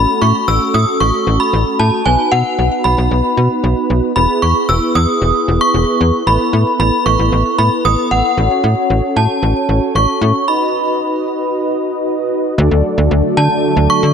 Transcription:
Already playing: A3 C#4 F#4 A4 B5
0.22 A2 C#6
0.48 A1 E6
0.74 A2 D#6
1.00 A1 C#6
1.27 A1
1.40 B5
1.53 A1
1.79 A2 A5
2.05 B1 B3 D#4 F#4 B4 G#5
2.32 B2 F#5
2.58 B1
2.84 B1 B5
2.98 B1
3.11 B1
3.37 B2
3.64 B1
3.90 B1
4.16 E1 B3 E4 G#4 B4 B5
4.42 E2 C#6
4.69 E1 E6
4.95 E2 D#6
5.22 E1
5.48 E1
5.61 C#6
5.74 E1
6.01 E2
6.27 A1 B3 E4 A4 B4 B5
6.53 A2
6.79 A1 B5
7.06 A1 C#6
7.19 A1
7.32 A1
7.58 A2 B5
7.85 A1 D#6
8.11 A1 F#5
8.37 A1 C#4 F#4 A4 C#5
8.64 A2
8.90 A1
9.16 A2 A5
9.42 A1
9.69 A1
9.95 A1 C#6
10.21 A2
10.48 D#4 F#4 B4 D#5 B5
12.58 D2 D3 F#3 A3 D4 F#4 A4 D5
12.71 D2
12.98 D2
13.11 D2
13.37 D3 A5
13.76 D2
13.90 C#6
14.03 D3

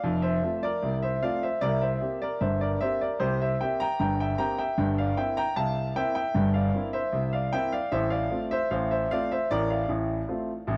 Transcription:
Already playing: D5 F5
0.04 F1 F2
0.22 C5 E5
0.43 A3 C4 F4
0.63 A#4 D5
0.83 C2 C3
1.02 C5 E5
1.22 A3 C4 F4 D5 F5
1.43 C5 E5
1.61 C2 C3 A#4 D5
1.82 C5 E5
2.01 A#3 C4 G4
2.22 A#4 D5
2.41 G1 G2 C5 E5
2.61 A#4 D5
2.81 A#3 C4 G4 C5 E5
3.01 A#4 D5
3.20 C2 C3 G4 C5
3.41 C5 E5
3.61 A#3 C4 G4 E5 G5
3.80 G5 A#5
4.00 G1 G2 G5 A#5
4.20 E5 G5
4.38 A#3 C4 G4 G5 A#5
4.58 E5 G5
4.78 G1 G2
4.98 D5 F5
5.17 A#3 C4 E4 E5 G5
5.37 G5 A#5
5.56 C2 C3 F5 A5
5.96 A#3 C4 E4 E5 G5
6.15 E5 G5
6.35 G1 G2
6.54 D5 F5
6.74 A#3 C4 E4
6.93 C5 E5
7.13 C2 C3
7.33 D5 F5
7.53 A#3 C4 E4 E5 G5
7.72 D5 F5
7.92 A1 A2 C5 E5
8.10 D5 F5
8.31 A3 C4 F4
8.51 C5 E5
8.71 A1 A2 C5 F5
8.91 C5 E5
9.11 A3 C4 F4 D5 F5
9.32 C5 E5
9.51 A1 A2 A#4 D5
9.70 D5 F5
9.89 A1 A2
10.29 A3 C4 F4
10.67 A1 A2

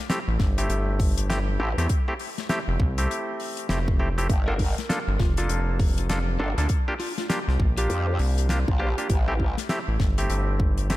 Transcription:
0.10 A3 C4 E4 G4, snare, closed hi-hat
0.28 A1
0.39 G1, kick, snare
0.58 A3 C4 E4 G4, closed hi-hat
0.70 G1, closed hi-hat
1.00 kick, open hi-hat
1.18 closed hi-hat
1.30 A3 C4 E4 G4, snare, closed hi-hat
1.60 A1 A3 C4 E4 G4
1.78 E2 A3 C4 E4 G4, snare, closed hi-hat
1.89 kick, closed hi-hat
2.08 A3 C4 E4 G4
2.19 open hi-hat
2.38 snare, closed hi-hat
2.49 A3 C4 E4 G4, snare, closed hi-hat
2.68 F1
2.80 C2, kick
2.98 A3 C4 E4 G4, closed hi-hat
3.11 closed hi-hat
3.40 open hi-hat
3.57 closed hi-hat
3.69 F1 A3 C4 E4 G4, snare, closed hi-hat
3.88 kick
3.99 A3 C4 E4 G4
4.18 A3 C4 E4 G4, closed hi-hat
4.30 G1, kick, closed hi-hat
4.48 A#3 D4 F4 A4 A#4
4.59 kick, open hi-hat
4.78 snare, closed hi-hat
4.89 A#3 D4 F4 A4, snare, closed hi-hat
5.08 G1
5.19 F1 F4, kick, snare
5.37 A#3 D4 F4 A4, closed hi-hat
5.49 F1, closed hi-hat
5.79 kick, open hi-hat
5.98 closed hi-hat
6.09 A#3 D4 F4 A4, snare, closed hi-hat
6.39 G1 A#3 D4 F4 A4
6.58 D2 A#3 D4 F4 A4, snare, closed hi-hat
6.69 kick, closed hi-hat
6.88 A#3 D4 F4 G4
7.00 F4, open hi-hat
7.18 F4, snare, closed hi-hat
7.29 A#3 D4 F4 G4, snare, closed hi-hat
7.48 C2, snare
7.60 A#1, kick
7.77 A#3 D4 F4 G4, closed hi-hat
7.90 F2, closed hi-hat
8.19 C2, open hi-hat
8.38 closed hi-hat
8.49 A#3 D4 F4 G4, snare, closed hi-hat
8.68 A#1, kick
8.79 A#3 D4 F4 G4
8.98 A#3 D4 F4 G4, closed hi-hat
9.10 A1, kick, closed hi-hat
9.28 A3 C4 E4 G4
9.40 kick
9.58 snare, closed hi-hat
9.69 A3 C4 E4 G4, snare, closed hi-hat
9.88 A1
10.00 G1, kick, snare
10.18 A3 C4 E4 G4, closed hi-hat
10.30 G1, closed hi-hat
10.60 kick
10.78 closed hi-hat
10.90 A3 C4 E4 G4, snare, closed hi-hat

